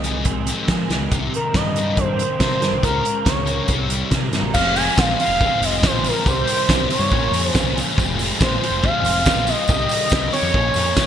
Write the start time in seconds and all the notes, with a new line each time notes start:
Already playing: C2 F2 C3 D#3
0.04 F3 G#3 C4, closed hi-hat
0.24 F3 G#3 C4, kick, closed hi-hat
0.47 D#3 F3 G#3 C4, closed hi-hat
0.68 F3 G#3, kick, snare, closed hi-hat
0.89 C2 F3 G#3 C4, snare, closed hi-hat
0.99 C#2
1.11 C2 C3 D#3 G3, kick, closed hi-hat
1.32 C3 D#3 A#4, closed hi-hat
1.54 G2 C3 D#3 D#5, kick, snare, closed hi-hat
1.76 C3 D#3 G3 A#3, closed hi-hat
1.97 C3 D#3 C4 C5, kick, closed hi-hat
2.19 C3 D#3, closed hi-hat
2.40 C3 D#3 G3 A#3 C5, kick, snare, closed hi-hat
2.61 G2 C3 D#3 C4, snare, closed hi-hat
2.72 C2
2.83 C#2 C#3 G#3 C#4 A#4, kick, closed hi-hat
3.04 C#3 F3 G#3, closed hi-hat
3.25 C#2 C#3 F3 G#3 C#5, kick, snare, closed hi-hat
3.45 C#3 G#3 A#3 C#4, closed hi-hat
3.67 C2 C3 G3 C4, kick, closed hi-hat
3.88 C3 G3 C4, closed hi-hat
4.11 C3 G3 A#3, kick, snare, closed hi-hat
4.31 G2 C3 G3 D#4, snare, closed hi-hat
4.41 A#1
4.54 F1 F3 G#3 C4 F4 F5, kick, crash, tambourine
4.74 F3 G#3 C4 F4 G#5, open hi-hat, tambourine
4.97 A#1 F3 G#3 C4 F4 F5, kick, snare, tambourine
5.19 F3 G#3 C4 F4 F5, open hi-hat, tambourine
5.28 F1
5.40 F3 G#3 C4 F4, kick, tambourine
5.60 F1 F3 G#3 C4 F4, open hi-hat, tambourine
5.64 D#5
5.81 F3 G#3 C4 F4, kick, snare, tambourine
5.86 C5
5.92 A#1
6.03 F3 G#3 C4 F4, open hi-hat, tambourine
6.08 A#4
6.23 C2 C3 D#3 G3 C4 G4, kick, tambourine
6.28 C5
6.45 C3 D#3 G3 C4 G4, open hi-hat
6.49 tambourine
6.67 C2 C3 D#3 G3 C4 G4, kick, snare, tambourine
6.87 C3 D#3 G3 C4 G4, open hi-hat
6.92 C#5, tambourine
6.99 G2
7.08 A#1 A#2 F3 A#3 C#4 F4, kick
7.13 tambourine
7.31 F2 A#2 F3 A#3 C#4 F4, open hi-hat, tambourine
7.47 C5
7.52 A#2 F3 A#3 C#4 F4, kick, snare, tambourine
7.63 C2
7.74 A#2 F3 A#3 C#4 F4
7.78 open hi-hat, tambourine
7.95 F1 F3 G#3 C4 F4, kick
7.99 tambourine
8.17 F3 G#3 C4 F4, tambourine
8.21 open hi-hat
8.38 A#1 F3 G#3 C4 F4, kick, tambourine
8.42 C5, snare
8.60 F3 G#3 C4 F4, open hi-hat
8.64 C5
8.70 F1
8.82 F3 G#3 C4 F4 F5, kick, tambourine
9.02 F1 F3 G#3 C4 F4, open hi-hat, tambourine
9.24 F3 G#3 C4 F4, kick, snare, tambourine
9.35 A#1
9.45 F3 G#3 C4 F4 D#5, open hi-hat, tambourine
9.66 C2 C3 D#3 G3 C4 G4, kick, tambourine
9.71 D#5
9.87 C3 D#3 G3 C4 G4, tambourine
9.91 C3 D#3, open hi-hat
10.09 C2 C3 D#3 G3 C4 G4, kick, snare, tambourine
10.31 C3 D#3 G3 C4 G4 C#5, open hi-hat, tambourine
10.42 F2
10.52 A#1 A#2 F3 A#3 C#4 F4, kick
10.74 F2 A#2 F3 A#3 C#4 F4, open hi-hat, tambourine
10.96 A#2 F3 A#3 C#4 F4, kick, snare, tambourine